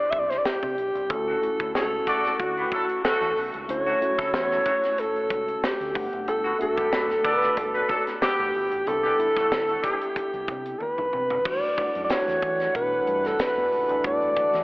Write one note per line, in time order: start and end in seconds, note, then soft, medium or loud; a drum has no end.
0.00 1.11 B2 medium
0.00 1.12 B3 medium
0.00 1.11 D4 medium
0.00 1.10 E4 medium
0.00 1.11 G4 medium
0.00 0.12 D5 medium
0.11 0.37 C2 medium
0.11 0.21 E5 medium
0.11 kick medium
0.11 closed hi-hat medium
0.19 0.31 D5 medium
0.30 0.40 C5 medium
0.30 snare soft
0.30 closed hi-hat soft
0.38 0.46 D5 medium
0.45 1.12 G4 medium
0.45 snare loud
0.63 0.74 C3 loud
0.63 kick medium
0.63 closed hi-hat soft
0.77 0.90 B1 medium
0.77 closed hi-hat medium
0.95 1.10 C2 medium
0.95 closed hi-hat medium
1.09 1.34 D2 loud
1.09 1.32 A3 medium
1.09 1.33 C#4 medium
1.09 1.33 E4 medium
1.09 1.33 F#4 medium
1.09 1.74 A4 medium
1.09 kick loud
1.09 closed hi-hat medium
1.27 1.39 C#3 medium
1.27 1.39 A3 medium
1.27 1.39 F#4 medium
1.41 2.32 A3 medium
1.41 2.32 C#4 medium
1.41 2.32 E4 medium
1.41 2.32 F#4 medium
1.41 closed hi-hat medium
1.60 1.71 D2 medium
1.60 1.72 F#3 medium
1.60 1.72 E4 medium
1.60 1.72 A4 medium
1.60 kick medium
1.60 closed hi-hat soft
1.74 1.99 C#2 medium
1.74 1.89 A3 medium
1.74 1.89 F#4 medium
1.74 2.35 A4 medium
1.74 1.89 C#5 medium
1.74 snare medium
2.07 2.33 A3 loud
2.07 2.33 F#4 loud
2.07 2.33 D5 loud
2.07 kick medium
2.07 closed hi-hat medium
2.25 snare soft
2.25 closed hi-hat medium
2.39 2.64 D2 medium
2.39 3.00 F#4 medium
2.39 kick medium
2.39 closed hi-hat medium
2.57 2.69 B3 medium
2.57 2.69 G4 medium
2.57 2.69 B4 medium
2.57 closed hi-hat soft
2.71 2.86 F#3 medium
2.71 2.86 E4 medium
2.71 2.86 A4 medium
2.71 kick medium
2.71 closed hi-hat medium
2.89 closed hi-hat soft
3.05 3.30 C#3 medium
3.05 3.30 A3 loud
3.05 3.30 F#4 loud
3.05 3.40 A4 loud
3.05 snare loud
3.21 3.33 E2 medium
3.21 closed hi-hat soft
3.37 3.50 B1 medium
3.37 open hi-hat medium
3.54 3.65 C#2 medium
3.54 closed hi-hat medium
3.68 3.93 D2 loud
3.68 3.91 A3 medium
3.68 3.92 C#4 medium
3.68 3.92 E4 medium
3.68 3.92 F#4 medium
3.68 4.30 C#5 medium
3.68 closed hi-hat medium
3.87 3.98 C#3 medium
3.87 3.98 A3 medium
3.87 3.98 F#4 medium
3.87 closed hi-hat soft
4.01 4.91 A3 medium
4.01 4.91 C#4 medium
4.01 4.91 E4 medium
4.01 4.92 F#4 medium
4.01 closed hi-hat medium
4.18 4.33 D2 medium
4.18 4.30 F#3 medium
4.18 4.31 E4 medium
4.18 4.30 A4 medium
4.18 kick medium
4.18 snare soft
4.18 closed hi-hat soft
4.33 4.58 E2 medium
4.33 5.01 C#5 loud
4.33 snare loud
4.51 4.63 F#3 medium
4.51 4.63 E4 medium
4.51 4.63 A4 medium
4.51 snare soft
4.65 4.76 C#3 medium
4.65 4.76 A3 medium
4.65 4.76 F#4 medium
4.65 kick medium
4.65 closed hi-hat medium
4.83 snare soft
4.83 closed hi-hat medium
4.98 5.66 A4 medium
4.98 closed hi-hat medium
5.16 closed hi-hat soft
5.30 5.55 C#2 medium
5.30 kick medium
5.30 closed hi-hat medium
5.48 closed hi-hat soft
5.64 6.28 G4 medium
5.64 snare loud
5.80 5.92 D2 medium
5.80 closed hi-hat soft
5.95 6.09 G1 medium
5.95 6.48 A3 medium
5.95 6.48 B3 medium
5.95 6.48 D4 medium
5.95 6.49 F#5 medium
5.95 kick medium
5.95 open hi-hat medium
6.13 6.27 F#1 medium
6.13 closed hi-hat soft
6.27 6.52 G1 loud
6.27 6.58 A4 medium
6.27 closed hi-hat medium
6.44 6.57 D3 medium
6.44 6.57 B3 medium
6.44 6.57 F#4 medium
6.44 closed hi-hat soft
6.59 7.49 A3 medium
6.59 7.49 B3 medium
6.59 7.50 D4 medium
6.59 7.50 F#4 medium
6.59 7.28 A4 medium
6.59 closed hi-hat medium
6.77 6.89 G1 medium
6.77 6.89 D3 medium
6.77 6.89 B3 medium
6.77 6.89 G4 medium
6.77 kick medium
6.77 closed hi-hat soft
6.92 7.17 F#1 medium
6.92 7.06 F#3 medium
6.92 7.06 D4 medium
6.92 7.06 B4 medium
6.92 snare loud
7.10 snare soft
7.10 closed hi-hat soft
7.24 7.50 B3 loud
7.24 7.50 A4 loud
7.24 7.60 B4 medium
7.24 7.50 D5 loud
7.24 kick medium
7.24 closed hi-hat medium
7.42 snare soft
7.42 closed hi-hat medium
7.57 7.82 G1 medium
7.57 7.96 A4 medium
7.57 kick medium
7.57 closed hi-hat medium
7.74 7.86 F#3 medium
7.74 7.86 D4 medium
7.74 7.86 B4 medium
7.74 closed hi-hat soft
7.89 8.03 F#3 medium
7.89 8.03 D4 medium
7.89 8.03 A4 medium
7.89 kick medium
7.89 closed hi-hat medium
8.07 snare soft
8.07 closed hi-hat medium
8.21 8.48 D3 loud
8.21 8.48 B3 loud
8.21 8.48 G4 loud
8.21 8.89 G4 medium
8.21 snare loud
8.39 8.51 A1 medium
8.39 closed hi-hat soft
8.54 8.68 G1 medium
8.54 open hi-hat soft
8.71 8.83 A1 medium
8.71 closed hi-hat soft
8.86 9.12 C2 loud
8.86 9.10 G3 medium
8.86 9.10 B3 medium
8.86 9.10 D4 medium
8.86 9.10 E4 medium
8.86 9.87 A4 medium
8.86 closed hi-hat medium
9.04 9.16 E3 medium
9.04 9.16 D4 medium
9.04 9.16 G4 medium
9.18 10.08 G3 medium
9.18 10.09 B3 medium
9.18 10.09 D4 medium
9.18 10.09 E4 medium
9.18 closed hi-hat medium
9.36 9.48 C2 medium
9.36 9.48 A3 medium
9.36 9.48 F#4 medium
9.36 9.48 A4 medium
9.36 kick medium
9.36 snare soft
9.36 closed hi-hat medium
9.51 9.76 D2 medium
9.51 snare loud
9.69 9.81 A3 medium
9.69 9.81 F#4 medium
9.69 9.81 A4 medium
9.69 closed hi-hat soft
9.83 9.97 E3 medium
9.83 9.97 D4 medium
9.83 9.97 G4 medium
9.83 10.80 G4 medium
9.83 kick medium
9.83 closed hi-hat medium
10.01 closed hi-hat medium
10.16 kick medium
10.16 closed hi-hat medium
10.33 10.45 C2 medium
10.33 closed hi-hat soft
10.48 10.73 C3 medium
10.48 kick medium
10.48 closed hi-hat medium
10.65 closed hi-hat medium
10.78 10.82 A4 medium
10.78 11.49 B4 medium
10.78 high tom medium
10.98 11.09 C2 medium
10.98 mid tom medium
11.13 11.38 C3 medium
11.13 mid tom medium
11.30 floor tom medium
11.45 11.59 E2 loud
11.45 14.64 E3 medium
11.45 11.91 G3 medium
11.45 11.91 A3 medium
11.45 14.64 D4 medium
11.45 11.91 D4 medium
11.45 14.64 E4 medium
11.45 11.91 F#4 medium
11.45 14.64 A4 medium
11.45 12.04 D5 medium
11.45 14.01 F#5 medium
11.45 kick loud
11.45 crash loud
11.78 kick medium
11.78 closed hi-hat medium
11.95 12.07 F#2 medium
11.95 closed hi-hat soft
12.04 12.13 D5 medium
12.10 13.00 G3 medium
12.10 13.00 A3 medium
12.10 13.00 D4 medium
12.10 13.00 F#4 medium
12.10 12.75 C#5 medium
12.10 snare loud
12.10 closed hi-hat medium
12.10 tambourine medium
12.28 12.39 E2 medium
12.28 snare soft
12.28 closed hi-hat soft
12.42 12.67 E3 medium
12.42 kick medium
12.42 closed hi-hat medium
12.60 snare soft
12.60 closed hi-hat soft
12.75 12.99 B2 medium
12.75 13.28 B4 medium
12.75 kick medium
12.75 closed hi-hat medium
13.07 13.32 G2 medium
13.07 closed hi-hat medium
13.24 13.43 A4 medium
13.24 snare soft
13.24 closed hi-hat soft
13.39 14.05 B4 medium
13.39 snare loud
13.39 closed hi-hat loud
13.39 tambourine medium
13.57 13.69 E2 medium
13.72 13.90 C#2 medium
13.72 open hi-hat medium
13.89 14.01 D2 medium
13.89 closed hi-hat medium
14.03 14.29 E2 loud
14.03 14.49 G3 medium
14.03 14.50 A3 medium
14.03 14.50 D4 medium
14.03 14.50 F#4 medium
14.03 14.64 D5 medium
14.03 14.64 F#5 medium
14.03 kick loud
14.03 closed hi-hat loud
14.22 closed hi-hat soft
14.37 kick medium
14.37 closed hi-hat medium
14.53 14.64 E3 medium
14.53 snare soft
14.53 closed hi-hat soft